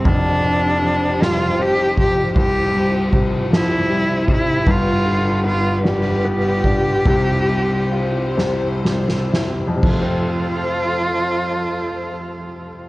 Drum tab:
CC |------------|------------|------------|------------|
RD |x-x-x-x-x---|x-x-x-x-x-x-|x-x-x-x-x-x-|x-x-x-------|
SD |------o-----|------o-----|------o-----|------o-ooo-|
BD |o---------o-|o---o-----o-|o---------o-|o-----------|

CC |x-----------|
RD |------------|
SD |------------|
BD |o-----------|